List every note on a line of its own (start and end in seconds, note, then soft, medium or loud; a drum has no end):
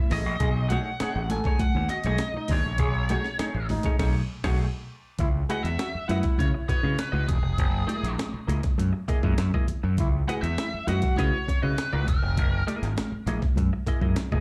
0.00 0.20 E4 medium
0.10 0.26 A1 medium
0.10 0.30 A3 medium
0.10 0.27 E4 loud
0.10 0.27 G#4 medium
0.10 0.69 D#5 loud
0.10 0.27 D#5 loud
0.10 open hi-hat medium
0.10 muted conga soft
0.10 low conga medium
0.26 0.38 A#1 loud
0.26 muted clean electric guitar stroke soft
0.40 0.76 B1 loud
0.40 0.49 G#4 loud
0.40 kick loud
0.40 closed hi-hat medium
0.40 low conga medium
0.69 0.89 A3 medium
0.69 0.90 D#4 loud
0.69 0.79 F#4 medium
0.69 0.90 G#4 medium
0.69 0.90 C#5 loud
0.69 1.32 F#5 loud
0.69 closed hi-hat medium
0.69 muted conga soft
0.69 high conga medium
1.00 1.19 A3 medium
1.00 1.20 D#4 loud
1.00 1.10 G#4 medium
1.00 1.20 G#4 medium
1.00 1.20 C#5 medium
1.00 muted fingered electric bass stroke medium
1.00 snare loud
1.00 closed hi-hat medium
1.16 1.39 A1 loud
1.29 1.54 A4 loud
1.29 1.61 G#5 loud
1.29 muted clean electric guitar stroke soft
1.29 snare soft
1.29 closed hi-hat medium
1.29 muted conga soft
1.29 high conga medium
1.44 1.60 A3 medium
1.44 1.61 D#4 medium
1.44 1.61 G#4 medium
1.44 1.60 C#5 medium
1.44 kick loud
1.44 snare soft
1.59 1.90 F#5 loud
1.59 muted fingered electric bass stroke soft
1.59 muted clean electric guitar stroke medium
1.59 kick medium
1.59 closed hi-hat medium
1.59 muted conga soft
1.59 high conga medium
1.75 1.87 D#2 loud
1.75 muted clean electric guitar stroke soft
1.89 1.99 F#4 medium
1.89 2.52 D#5 loud
1.89 snare soft
1.89 closed hi-hat medium
1.89 muted conga soft
2.04 2.17 B1 medium
2.04 2.21 A3 medium
2.04 2.21 D#4 medium
2.04 2.21 G#4 medium
2.04 2.21 C#5 medium
2.04 closed hi-hat medium
2.04 high conga medium
2.18 muted clean electric guitar stroke soft
2.18 snare loud
2.18 closed hi-hat medium
2.18 muted conga soft
2.34 2.59 D#4 loud
2.34 muted clean electric guitar stroke soft
2.34 high conga medium
2.48 2.62 D#2 medium
2.48 2.71 A3 medium
2.48 2.66 D#4 medium
2.48 3.66 C#5 medium
2.48 kick loud
2.48 open hi-hat medium
2.48 muted conga soft
2.48 low conga medium
2.52 2.66 G#4 medium
2.52 2.66 D#5 medium
2.65 2.79 A#1 medium
2.65 muted clean electric guitar stroke medium
2.78 3.15 B1 loud
2.78 2.89 G#4 loud
2.78 kick loud
2.78 closed hi-hat medium
2.78 low conga medium
3.09 3.28 A3 medium
3.09 3.29 D#4 loud
3.09 3.19 F#4 medium
3.09 3.29 G#4 loud
3.09 3.29 C#5 loud
3.09 closed hi-hat medium
3.09 high conga medium
3.24 snare soft
3.38 3.58 A3 medium
3.38 3.47 D#4 medium
3.38 3.58 D#4 medium
3.38 3.58 G#4 medium
3.38 3.58 C#5 loud
3.38 muted fingered electric bass stroke soft
3.38 snare loud
3.38 closed hi-hat medium
3.38 muted conga soft
3.54 3.78 A1 medium
3.69 3.93 D#4 loud
3.69 muted clean electric guitar stroke soft
3.69 snare soft
3.69 open hi-hat medium
3.69 muted conga soft
3.69 high conga medium
3.69 low conga medium
3.83 3.99 A3 medium
3.83 3.99 D#4 medium
3.83 3.98 G#4 medium
3.83 3.98 C#5 medium
3.83 kick medium
3.83 snare soft
3.83 closed hi-hat medium
3.98 4.20 B1 medium
3.98 4.21 A3 medium
3.98 4.14 D#4 loud
3.98 4.20 D#4 medium
3.98 4.20 G#4 loud
3.98 4.20 C#5 loud
3.98 kick loud
3.98 snare loud
3.98 crash medium
4.44 4.65 B1 loud
4.44 4.65 A3 loud
4.44 4.65 D#4 loud
4.44 4.60 F#4 loud
4.44 4.65 G#4 loud
4.44 4.65 C#5 loud
4.44 kick loud
4.44 snare loud
4.44 crash medium
5.19 5.43 C#2 loud
5.19 5.29 E4 loud
5.19 kick loud
5.19 closed hi-hat medium
5.19 muted conga soft
5.19 low conga medium
5.49 5.68 E4 medium
5.49 5.68 F#4 medium
5.49 5.58 G#4 loud
5.49 5.68 B4 medium
5.49 5.68 D#5 loud
5.49 5.63 F#5 medium
5.49 closed hi-hat medium
5.49 high conga medium
5.64 5.76 E2 medium
5.64 6.08 E5 loud
5.64 closed hi-hat medium
5.78 5.88 F#4 medium
5.78 muted clean electric guitar stroke soft
5.78 snare loud
5.78 closed hi-hat medium
5.78 high conga medium
5.95 muted fingered electric bass stroke soft
6.08 6.21 F#2 medium
6.08 6.65 E4 loud
6.08 6.24 E4 medium
6.08 6.24 F#4 medium
6.08 6.24 B4 medium
6.08 6.23 D#5 medium
6.08 6.17 F#5 medium
6.08 snare soft
6.08 closed hi-hat medium
6.08 muted conga soft
6.08 high conga medium
6.23 muted clean electric guitar stroke medium
6.23 kick medium
6.23 snare soft
6.23 closed hi-hat medium
6.38 6.51 C#3 medium
6.38 6.47 C#5 loud
6.38 muted clean electric guitar stroke soft
6.38 kick medium
6.38 closed hi-hat medium
6.38 high conga medium
6.54 muted clean electric guitar stroke soft
6.69 6.83 E4 medium
6.69 6.83 F#4 medium
6.69 6.83 B4 medium
6.69 6.98 C#5 medium
6.69 6.82 D#5 medium
6.69 muted fingered electric bass stroke medium
6.69 kick medium
6.69 snare soft
6.69 closed hi-hat medium
6.69 muted conga soft
6.83 6.95 C#3 medium
6.83 6.97 E4 medium
6.83 6.98 F#4 medium
6.83 6.98 B4 medium
6.83 6.98 D#5 medium
6.83 high conga medium
6.99 7.27 B4 medium
6.99 snare loud
6.99 closed hi-hat medium
6.99 muted conga soft
7.12 7.25 C#2 medium
7.12 7.27 E4 medium
7.12 7.28 F#4 medium
7.12 7.28 B4 medium
7.12 7.28 D#5 medium
7.12 high conga medium
7.28 7.41 E1 medium
7.28 8.15 G#4 medium
7.28 kick medium
7.28 closed hi-hat medium
7.28 low conga medium
7.42 7.59 F1 medium
7.42 muted clean electric guitar stroke soft
7.58 7.83 F#1 loud
7.58 kick loud
7.58 closed hi-hat medium
7.58 muted conga soft
7.58 low conga medium
7.87 8.08 A#3 medium
7.87 8.08 E4 medium
7.87 8.08 G#4 medium
7.87 8.09 D#5 medium
7.87 closed hi-hat medium
7.87 muted conga soft
7.87 high conga medium
8.03 8.15 A#1 medium
8.03 closed hi-hat medium
8.18 muted clean electric guitar stroke soft
8.18 snare loud
8.18 closed hi-hat medium
8.18 muted conga soft
8.18 high conga medium
8.34 muted fingered electric bass stroke soft
8.47 8.60 C#2 medium
8.47 8.62 A#3 medium
8.47 8.63 E4 medium
8.47 8.62 G#4 medium
8.47 8.62 D#5 medium
8.47 closed hi-hat medium
8.47 muted conga soft
8.47 high conga medium
8.63 muted clean electric guitar stroke medium
8.63 kick loud
8.63 snare soft
8.63 closed hi-hat medium
8.78 8.90 F#2 medium
8.78 muted clean electric guitar stroke soft
8.78 closed hi-hat medium
8.78 high conga medium
8.93 muted clean electric guitar stroke soft
9.08 9.23 A#3 medium
9.08 9.23 E4 medium
9.08 9.23 G#4 medium
9.08 9.22 D#5 medium
9.08 muted fingered electric bass stroke medium
9.08 kick medium
9.08 snare soft
9.08 closed hi-hat medium
9.23 9.35 F#2 loud
9.23 9.38 A#3 medium
9.23 9.38 E4 medium
9.23 9.38 G#4 medium
9.23 9.38 D#5 medium
9.23 kick medium
9.23 high conga medium
9.38 9.50 F#2 loud
9.38 muted clean electric guitar stroke soft
9.38 snare loud
9.38 closed hi-hat medium
9.38 muted conga soft
9.54 9.67 A#3 medium
9.54 9.68 E4 medium
9.54 9.68 G#4 medium
9.54 9.68 D#5 medium
9.54 kick medium
9.54 high conga medium
9.68 muted fingered electric bass stroke medium
9.68 muted clean electric guitar stroke soft
9.68 closed hi-hat medium
9.68 muted conga soft
9.68 low conga medium
9.83 9.95 F#2 loud
9.83 muted clean electric guitar stroke soft
9.97 10.22 C#2 loud
9.97 10.08 E4 loud
9.97 kick loud
9.97 closed hi-hat medium
9.97 muted conga soft
9.97 low conga medium
10.28 10.47 E4 medium
10.28 10.47 F#4 medium
10.28 10.39 G#4 medium
10.28 10.47 B4 loud
10.28 10.47 D#5 loud
10.28 10.33 F#5 loud
10.28 closed hi-hat medium
10.28 high conga medium
10.42 10.55 E2 medium
10.42 10.87 E5 loud
10.42 closed hi-hat medium
10.57 10.68 E4 medium
10.57 muted clean electric guitar stroke soft
10.57 snare loud
10.57 closed hi-hat medium
10.57 high conga medium
10.74 muted fingered electric bass stroke medium
10.87 11.00 F#2 medium
10.87 11.02 E4 medium
10.87 11.02 F#4 medium
10.87 11.46 F#4 loud
10.87 11.02 B4 medium
10.87 11.01 D#5 medium
10.87 11.19 F#5 medium
10.87 snare soft
10.87 closed hi-hat medium
10.87 muted conga soft
10.87 high conga medium
11.02 muted clean electric guitar stroke soft
11.02 kick medium
11.02 snare soft
11.02 closed hi-hat medium
11.16 11.30 C#3 loud
11.16 11.37 E4 medium
11.16 11.37 F#4 medium
11.16 11.37 B4 medium
11.16 11.62 C#5 loud
11.16 11.37 D#5 loud
11.16 kick medium
11.16 closed hi-hat medium
11.16 muted conga soft
11.16 high conga medium
11.48 muted clean electric guitar stroke soft
11.48 muted fingered electric bass stroke medium
11.48 kick medium
11.48 snare soft
11.48 closed hi-hat medium
11.63 11.75 C#3 loud
11.63 11.77 E4 soft
11.63 11.77 F#4 medium
11.63 12.08 B4 loud
11.63 11.77 B4 medium
11.63 11.77 D#5 medium
11.63 high conga medium
11.76 snare loud
11.76 closed hi-hat medium
11.76 muted conga soft
11.93 12.05 C#2 medium
11.93 12.07 E4 medium
11.93 12.07 F#4 medium
11.93 12.07 B4 medium
11.93 12.08 D#5 medium
11.93 high conga medium
12.07 12.20 E1 medium
12.07 12.64 A#4 medium
12.07 muted clean electric guitar stroke medium
12.07 kick loud
12.07 closed hi-hat medium
12.07 muted conga soft
12.07 low conga medium
12.22 12.38 F1 medium
12.22 muted clean electric guitar stroke medium
12.37 12.62 F#1 loud
12.37 kick loud
12.37 closed hi-hat medium
12.37 muted conga soft
12.37 low conga medium
12.67 12.87 A#3 medium
12.67 12.87 E4 medium
12.67 12.88 G#4 medium
12.67 12.88 D#5 medium
12.67 closed hi-hat medium
12.67 high conga medium
12.82 12.94 G#1 medium
12.82 snare soft
12.82 closed hi-hat medium
12.97 muted clean electric guitar stroke soft
12.97 snare loud
12.97 closed hi-hat medium
12.97 muted conga soft
12.97 high conga medium
13.12 muted fingered electric bass stroke soft
13.26 13.39 A#1 medium
13.26 13.42 A#3 medium
13.26 13.42 E4 medium
13.26 13.42 G#4 medium
13.26 13.42 D#5 medium
13.26 closed hi-hat medium
13.26 high conga medium
13.42 muted clean electric guitar stroke medium
13.42 kick medium
13.42 snare soft
13.56 13.69 F#2 medium
13.56 muted clean electric guitar stroke soft
13.56 kick loud
13.56 closed hi-hat medium
13.56 high conga medium
13.73 muted clean electric guitar stroke soft
13.87 14.01 A#3 medium
13.87 14.02 E4 medium
13.87 14.01 G#4 medium
13.87 14.01 D#5 medium
13.87 muted fingered electric bass stroke medium
13.87 kick medium
13.87 snare soft
13.87 closed hi-hat medium
13.87 muted conga soft
14.01 14.14 F#2 medium
14.01 14.16 A#3 medium
14.01 14.17 E4 medium
14.01 14.17 G#4 medium
14.01 14.16 D#5 medium
14.01 kick medium
14.01 high conga medium
14.16 snare medium
14.16 closed hi-hat medium
14.16 muted conga soft
14.32 14.40 F#1 medium
14.32 14.40 A#3 medium
14.32 14.40 E4 medium
14.32 14.40 G#4 medium
14.32 14.40 D#5 medium
14.32 kick loud
14.32 high conga medium